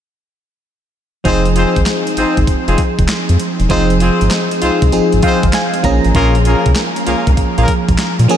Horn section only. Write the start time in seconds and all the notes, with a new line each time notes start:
1.25 C4 D#4 F4 G#4 C5
1.55 C4 D#4 F4 G#4 C5
2.17 C4 D#4 F4 G#4 C5
2.68 C4 D#4 F4 G#4 C5
3.70 C4 D#4 F4 G#4 C5
4.00 C4 D#4 F4 G#4 C5
4.62 C4 D#4 F4 G#4 C5
5.23 C4 D#4 F4 G#4 C5
6.15 A#3 C#4 F4 G#4 A#4
6.45 A#3 C#4 F4 G#4 A#4
7.06 A#3 C#4 F4 G#4 A#4
7.57 A#3 C#4 F4 G#4 A#4